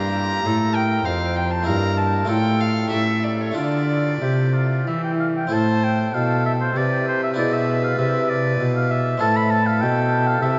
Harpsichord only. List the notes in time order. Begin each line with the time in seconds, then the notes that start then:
Already playing: G2 A#3 D4 G4
0.45 A2
1.06 F2
1.62 A#3 E4 G4
1.67 G2
2.25 A3 D4 F4
2.29 A2
2.88 A3 C#4 G4
2.92 A2
3.52 A3 D4 F4
3.56 D3
4.22 C3
4.87 E3
5.47 C4 E4 A4
5.51 A2
6.15 B2
6.76 C3
7.34 D4 E4 G#4
7.38 B2
7.99 C3
8.60 B2
9.17 C4 E4 A4
9.22 A2
9.83 B2
10.43 C3